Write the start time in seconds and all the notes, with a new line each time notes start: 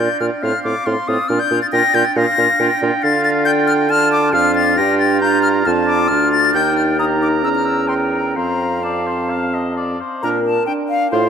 0.00 D5 G6
0.20 A#2 D4 F4 F6
0.42 A2 C4 F4 F5 F6
0.64 A2 C4 F4 D6
0.86 A2 C4 F4 C6
1.08 A2 C4 F4 D#6
1.28 A#2 D4 F4 D5 F6
1.40 G6
1.51 A#2 D4 F4
1.62 A6
1.73 A#2 D4 F4 G5 A#6
1.94 A#2 D4 F4 G6
2.05 A6
2.16 A#2 D4 F4 F5 A#6
2.38 A#2 D4 F4
2.60 A#2 D4 F4 G5
2.81 A#2 D4 F4
3.03 D3 D4 F4 F5 A6
3.24 A6
3.45 G5 G6
3.67 F6
3.90 D4 F4 A5 F6
4.12 D6
4.33 F2 D4 F4 F5 F6
4.55 A6
4.77 G2 D4 F4 G5 A#6
4.99 A6
5.21 D4 F4 A#5 G6
5.42 F6
5.65 F2 D4 F4 A5 F6
5.86 D6
6.08 D2 D4 F4 F6
6.32 A6
6.54 D#2 D#4 A#4 G5 G6
6.76 F6
6.99 D#4 A#4 A#5 D#6
7.22 D6
7.43 E2 C#4 A#4 E6
7.55 F6
7.65 E6
7.88 G5 C6
8.12 A#5
8.36 F2 C4 C5 F5 A#5
8.83 C4 D5 A5
9.07 C5
9.30 F5
9.53 D#5
9.77 D5
10.00 C5
10.23 A#2 D4 A#4 A#5
10.45 A5
10.66 D4 G5
10.89 F5
11.11 A2 F4 C5 F5